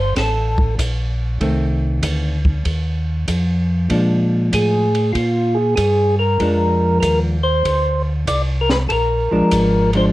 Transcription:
0.00 0.14 G1 medium
0.00 0.15 C5 medium
0.16 0.76 A1 medium
0.16 0.75 A4 medium
0.16 kick soft
0.16 snare soft
0.16 ride medium
0.58 kick soft
0.78 1.39 A#1 medium
0.78 kick soft
0.78 hi-hat pedal medium
0.78 ride medium
1.41 2.01 C2 medium
1.41 2.37 D#3 soft
1.41 2.37 A3 medium
1.41 2.37 C4 medium
1.41 kick soft
1.41 ride medium
2.03 2.64 D2 medium
2.03 kick soft
2.03 hi-hat pedal medium
2.03 ride medium
2.45 kick soft
2.65 3.26 D#2 medium
2.65 kick soft
2.65 ride medium
3.28 3.88 F2 medium
3.28 kick soft
3.28 hi-hat pedal medium
3.28 ride medium
3.90 4.51 A#2 medium
3.90 4.86 F3 soft
3.90 4.86 G#3 soft
3.90 4.87 D4 medium
3.90 kick soft
3.90 ride medium
4.52 5.13 A2 medium
4.52 5.12 G#4 medium
4.52 kick soft
4.52 hi-hat pedal medium
4.52 ride medium
4.95 ride soft
5.13 5.76 A#2 medium
5.13 5.57 F4 medium
5.13 kick soft
5.13 ride medium
5.55 5.75 G#4 medium
5.76 6.38 G2 medium
5.76 6.16 G#4 medium
5.76 kick soft
5.76 hi-hat pedal soft
5.76 ride medium
6.19 6.98 A#4 medium
6.40 7.01 F2 medium
6.40 7.36 F3 soft
6.40 7.36 G#3 soft
6.40 7.37 D4 medium
6.40 kick soft
6.40 ride soft
7.00 7.63 D#2 medium
7.00 7.20 A#4 medium
7.00 kick soft
7.00 hi-hat pedal medium
7.00 ride medium
7.43 8.02 C5 loud
7.65 8.26 D2 medium
7.65 kick soft
7.65 ride medium
8.27 8.88 C2 medium
8.27 8.42 D5 loud
8.27 kick soft
8.27 hi-hat pedal medium
8.27 ride medium
8.61 8.70 A#4 medium
8.70 8.78 B4 medium
8.70 snare medium
8.89 9.29 A#1 medium
8.89 8.92 A4 medium
8.89 9.91 A#4 medium
8.89 kick soft
8.89 ride medium
9.31 9.42 A#1 soft
9.31 9.89 F3 medium
9.31 9.90 G#3 medium
9.31 9.90 D4 medium
9.51 10.12 G#1 medium
9.51 kick soft
9.51 hi-hat pedal soft
9.51 ride medium
9.93 10.12 F3 medium
9.93 10.12 G#3 medium
9.93 10.12 D4 medium
9.93 ride soft
9.97 10.06 C5 medium

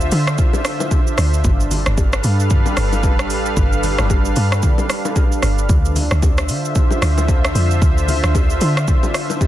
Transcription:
0.00 1.40 D3 medium
0.00 9.47 D4 medium
0.00 1.40 F4 medium
0.00 1.41 C5 medium
0.00 1.40 E5 medium
0.00 shaker medium
0.12 0.37 D3 loud
0.12 open hi-hat medium
0.12 shaker loud
0.27 cross-stick loud
0.27 shaker medium
0.38 kick loud
0.38 low conga medium
0.38 shaker medium
0.53 high bongo medium
0.53 low bongo medium
0.53 shaker medium
0.65 cross-stick loud
0.65 open hi-hat medium
0.65 shaker medium
0.80 low bongo medium
0.80 shaker medium
0.91 kick medium
0.91 high bongo medium
0.91 shaker medium
1.07 shaker medium
1.18 1.43 D2 loud
1.18 cross-stick medium
1.18 open hi-hat medium
1.18 shaker medium
1.34 shaker medium
1.44 1.84 G1 loud
1.44 5.65 G3 medium
1.44 5.65 A4 medium
1.44 5.65 B4 medium
1.44 5.65 F5 medium
1.44 kick loud
1.44 low conga medium
1.44 shaker medium
1.60 shaker medium
1.71 open hi-hat medium
1.71 low conga medium
1.71 shaker medium
1.86 2.22 G1 loud
1.86 cross-stick loud
1.86 shaker medium
1.98 kick loud
1.98 high bongo medium
1.98 low bongo medium
1.98 shaker medium
2.13 cross-stick medium
2.13 shaker medium
2.24 2.64 G2 loud
2.24 open hi-hat medium
2.24 shaker loud
2.40 shaker medium
2.50 kick loud
2.50 low conga medium
2.50 shaker medium
2.66 high bongo medium
2.66 low bongo medium
2.66 shaker soft
2.77 3.32 G1 medium
2.77 cross-stick loud
2.77 open hi-hat medium
2.77 shaker medium
2.93 low bongo medium
2.93 shaker medium
3.03 kick medium
3.03 high bongo medium
3.03 shaker medium
3.19 cross-stick loud
3.19 shaker medium
3.30 3.55 A1 loud
3.30 open hi-hat medium
3.30 shaker medium
3.46 shaker medium
3.57 3.96 G1 loud
3.57 kick loud
3.57 low conga medium
3.57 shaker medium
3.73 shaker medium
3.83 open hi-hat medium
3.83 low conga medium
3.83 shaker medium
3.98 4.34 G1 loud
3.98 cross-stick medium
3.98 low bongo medium
3.98 shaker soft
4.10 kick medium
4.10 high bongo medium
4.10 low bongo medium
4.10 shaker medium
4.25 shaker medium
4.36 4.62 G2 loud
4.36 open hi-hat medium
4.36 shaker loud
4.52 cross-stick loud
4.52 shaker medium
4.63 kick loud
4.63 low conga medium
4.63 shaker medium
4.78 high bongo medium
4.78 low bongo medium
4.78 shaker soft
4.90 cross-stick loud
4.90 open hi-hat medium
4.90 shaker loud
5.05 low bongo medium
5.05 shaker medium
5.16 kick medium
5.16 high bongo medium
5.16 shaker medium
5.32 shaker medium
5.43 5.68 G1 medium
5.43 cross-stick medium
5.43 open hi-hat medium
5.43 shaker medium
5.58 shaker medium
5.69 6.09 D2 loud
5.69 9.47 D3 medium
5.69 9.47 F4 medium
5.69 9.47 C5 medium
5.69 9.47 E5 medium
5.69 kick loud
5.69 low conga medium
5.69 shaker medium
5.85 shaker medium
5.96 open hi-hat soft
5.96 low conga medium
5.96 shaker medium
6.11 6.51 D2 loud
6.11 cross-stick medium
6.11 shaker soft
6.22 kick loud
6.22 high bongo medium
6.22 low bongo medium
6.22 shaker medium
6.38 cross-stick loud
6.38 shaker medium
6.49 6.89 D3 loud
6.49 open hi-hat medium
6.49 shaker loud
6.65 shaker medium
6.75 kick loud
6.75 low conga medium
6.75 shaker medium
6.91 high bongo medium
6.91 low bongo medium
6.91 shaker medium
7.02 7.52 D2 loud
7.02 cross-stick loud
7.02 open hi-hat medium
7.02 shaker medium
7.18 low bongo medium
7.18 shaker medium
7.28 kick medium
7.28 high bongo medium
7.28 shaker medium
7.45 cross-stick loud
7.45 shaker medium
7.55 7.80 F2 loud
7.55 open hi-hat medium
7.55 shaker medium
7.71 shaker medium
7.82 8.21 D2 loud
7.82 kick loud
7.82 low conga medium
7.82 shaker medium
7.98 shaker medium
8.08 open hi-hat medium
8.08 low conga medium
8.08 shaker medium
8.24 8.59 D2 loud
8.24 cross-stick loud
8.24 shaker medium
8.35 kick loud
8.35 high bongo medium
8.35 low bongo medium
8.35 shaker medium
8.50 shaker medium
8.61 8.86 D3 loud
8.61 open hi-hat medium
8.61 shaker loud
8.77 cross-stick loud
8.77 shaker medium
8.88 kick loud
8.88 low conga medium
8.88 shaker medium
9.03 high bongo medium
9.03 low bongo medium
9.03 shaker medium
9.14 cross-stick loud
9.14 open hi-hat medium
9.14 shaker loud
9.30 low bongo medium
9.30 shaker medium
9.41 kick medium
9.41 high bongo medium
9.41 shaker medium

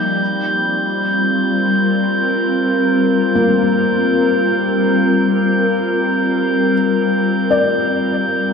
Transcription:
0.00 8.53 G3 medium
0.00 1.79 A#3 medium
0.00 8.53 C4 medium
0.00 1.28 G4 medium
0.00 8.53 G6 medium
0.21 8.53 F4 medium
1.11 8.53 A#4 medium
3.35 6.71 A#3 medium
7.50 8.53 D5 medium

